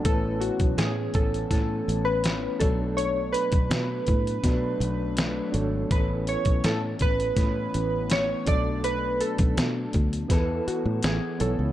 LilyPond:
<<
  \new Staff \with { instrumentName = "Synth keys" } { \time 4/4 \key a \major \tempo 4 = 82 a'8 fis'8 gis'8 a'8 a'8. b'8. a'8 | cis''8 b'2. r8 | b'8 cis''8 a'8 b'4. cis''8 d''8 | b'8 a'4 r4 fis'8 gis'8 a'8 | }
  \new Staff \with { instrumentName = "Reed electric piano" } { \time 4/4 \key a \major <a cis' e' b'>4. r2 <d' fis' a' cis''>8~ | <d' fis' a' cis''>4 r2 r8 <d' fis' a' cis''>8 | <cis' e' a' b'>4. r2 <d' fis' a' d''>8~ | <d' fis' a' d''>4 r4 <b e' gis' a' b'>4 r8 <b e' a' cis''>8 | }
  \new Staff \with { instrumentName = "Clean electric guitar" } { \time 4/4 \key a \major <a, e b cis'>4. <e b cis'>8 <a, e b cis'>4 <a, e b cis'>8 <b, fis a d'>8~ | <b, fis a d'>2 <b, fis a d'>4 <b, fis a d'>4 | <a, e b cis'>2 <a, e b cis'>4 <a, e b cis'>8 <b, fis a d'>8~ | <b, fis a d'>2 <e b e' a'>4 <e b e'>4 | }
  \new Staff \with { instrumentName = "Fingered electric bass" } { \clef bass \time 4/4 \key a \major a,,8. b,,16 a,8 a,,8 a,8 a,,4 b,,8~ | b,,8. b,,16 b,8 a,8 b,8 b,,4 gis,,8 | a,,8. b,,16 a,8 a,,8 a,8 a,,4 b,,8~ | b,,8. b,,16 b,8 d,8 e,8 r16 a,16 a,,16 r16 b,,16 cis,16 | }
  \new DrumStaff \with { instrumentName = "Drums" } \drummode { \time 4/4 <hh bd>8 hh16 <hh bd>16 <hh sn>8 <hh bd>16 hh16 <hh bd sn>8 hh8 <hh sn>8 <hh bd>8 | hh8 hh16 <hh bd>16 <hh sn>8 <hh bd>16 hh16 <hh bd sn>8 hh8 <hh sn>8 hh8 | <hh bd>8 hh16 <hh bd>16 <hh sn>8 <hh bd>16 hh16 <hh bd sn>8 hh8 <hh sn>8 <hh bd>8 | hh8 hh16 <hh bd>16 <hh sn>8 <hh bd>16 hh16 <hh bd sn>8 hh8 <hh sn>8 hh8 | }
>>